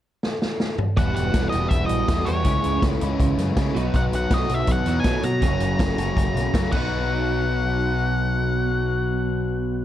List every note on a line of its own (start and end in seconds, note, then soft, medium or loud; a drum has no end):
0.23 snare medium
0.42 snare medium
0.60 snare medium
0.78 mid tom medium
0.97 1.10 E1 medium
0.97 1.53 E2 medium
0.97 1.53 B2 medium
0.97 1.54 E3 medium
0.97 1.53 G3 medium
0.97 1.52 B3 medium
0.97 1.52 E4 loud
0.97 2.24 F#4 medium
0.97 1.15 F#5 loud
0.97 kick loud
0.97 closed hi-hat medium
1.16 1.31 E1 medium
1.16 1.49 F#5 loud
1.16 closed hi-hat medium
1.34 1.47 E1 medium
1.34 kick loud
1.34 snare loud
1.34 closed hi-hat medium
1.49 2.08 B3 medium
1.49 2.08 E4 medium
1.49 1.68 D#5 medium
1.49 closed hi-hat medium
1.54 1.67 E1 medium
1.54 2.07 E2 medium
1.54 2.08 B2 medium
1.54 2.08 E3 medium
1.54 2.08 G3 medium
1.68 1.84 E1 medium
1.68 1.86 E5 loud
1.68 kick loud
1.68 closed hi-hat medium
1.86 2.02 A#1 medium
1.86 2.27 D#5 medium
1.86 closed hi-hat medium
2.08 2.45 E2 medium
2.08 2.21 E2 medium
2.08 2.45 B2 medium
2.08 2.46 E3 medium
2.08 2.46 G3 medium
2.08 2.46 B3 medium
2.08 2.46 E4 medium
2.08 kick loud
2.08 snare loud
2.08 closed hi-hat medium
2.25 2.45 E2 medium
2.25 2.42 E3 medium
2.25 2.44 G3 medium
2.25 2.45 B3 medium
2.25 2.44 F#4 medium
2.25 2.78 C#5 medium
2.25 closed hi-hat medium
2.44 2.58 C#2 loud
2.44 3.00 C#3 medium
2.44 3.01 E3 medium
2.44 3.01 G#3 medium
2.44 kick loud
2.44 closed hi-hat medium
2.48 3.02 C#4 medium
2.48 3.02 E4 medium
2.64 2.78 C#2 medium
2.64 closed hi-hat medium
2.82 2.95 C#2 medium
2.82 kick loud
2.82 snare loud
2.82 closed hi-hat medium
3.01 3.14 C#2 medium
3.01 3.58 E3 medium
3.01 3.58 G#3 medium
3.01 3.57 C#4 medium
3.01 3.57 E4 medium
3.01 closed hi-hat medium
3.06 3.56 C#3 medium
3.20 3.32 C#2 medium
3.20 kick loud
3.20 closed hi-hat medium
3.38 3.51 F#2 medium
3.38 snare soft
3.38 closed hi-hat medium
3.56 3.69 C#3 medium
3.56 3.75 C#3 medium
3.56 3.75 E3 medium
3.56 3.76 G#3 medium
3.56 3.76 C#4 medium
3.56 3.76 E4 medium
3.56 kick loud
3.56 snare loud
3.56 closed hi-hat medium
3.74 3.89 B1 medium
3.74 5.03 B2 medium
3.74 5.05 F#3 medium
3.74 closed hi-hat medium
3.78 4.31 B2 medium
3.78 4.32 F#3 loud
3.78 4.32 B3 medium
3.78 4.32 D#4 loud
3.78 4.35 F#4 loud
3.94 4.07 B1 loud
3.94 4.01 F#5 medium
3.94 kick loud
3.94 closed hi-hat medium
4.13 4.25 B1 medium
4.13 4.34 F#5 medium
4.13 closed hi-hat medium
4.31 4.44 B1 medium
4.31 4.86 B2 medium
4.31 4.89 F#3 medium
4.31 4.87 B3 medium
4.31 4.87 D#4 medium
4.31 4.54 D#5 medium
4.31 kick loud
4.31 snare loud
4.31 closed hi-hat medium
4.35 4.87 F#4 medium
4.49 4.62 B1 medium
4.49 closed hi-hat medium
4.54 4.71 E5 medium
4.67 4.80 B1 loud
4.67 kick loud
4.67 closed hi-hat medium
4.72 4.99 F#5 loud
4.86 4.99 E2 medium
4.86 5.45 F#3 medium
4.86 5.24 B3 medium
4.86 5.23 D#4 medium
4.86 5.47 F#4 medium
4.86 closed hi-hat medium
4.90 5.25 B2 medium
5.00 5.24 G#5 loud
5.04 5.22 B2 medium
5.04 5.18 B2 medium
5.04 5.42 F#3 medium
5.04 5.24 B3 medium
5.04 5.24 D#4 medium
5.04 kick loud
5.04 snare loud
5.04 closed hi-hat medium
5.23 5.44 B2 medium
5.23 6.69 A#5 medium
5.23 closed hi-hat medium
5.41 5.55 F#1 loud
5.41 5.98 F#2 medium
5.41 6.71 C#3 medium
5.41 6.72 C#4 loud
5.41 kick loud
5.41 closed hi-hat medium
5.45 5.98 C#3 loud
5.45 5.99 F#3 medium
5.45 5.99 A#3 medium
5.45 5.99 C#4 medium
5.45 5.98 F#4 loud
5.60 5.73 F#1 medium
5.60 closed hi-hat medium
5.79 5.92 F#1 medium
5.79 kick loud
5.79 snare loud
5.79 closed hi-hat medium
5.98 6.11 F#1 medium
5.98 6.52 F#2 medium
5.98 6.54 C#3 medium
5.98 6.54 F#3 medium
5.98 6.54 A#3 medium
5.98 6.54 C#4 medium
5.98 6.53 F#4 medium
5.98 closed hi-hat medium
6.16 6.29 F#1 loud
6.16 kick loud
6.16 closed hi-hat medium
6.35 6.48 B1 medium
6.35 snare soft
6.35 closed hi-hat medium
6.54 6.73 F#2 medium
6.54 6.67 F#2 medium
6.54 6.72 C#3 medium
6.54 6.73 F#3 medium
6.54 6.74 A#3 medium
6.54 6.74 C#4 medium
6.54 6.74 F#4 medium
6.54 kick loud
6.54 snare loud
6.54 closed hi-hat medium
6.72 9.85 B1 medium
6.72 9.85 B2 loud
6.72 9.85 F#3 medium
6.72 9.85 B3 loud
6.72 9.85 F#5 medium
6.72 kick loud
6.72 crash medium
6.76 9.85 D#4 loud
6.76 9.85 F#4 loud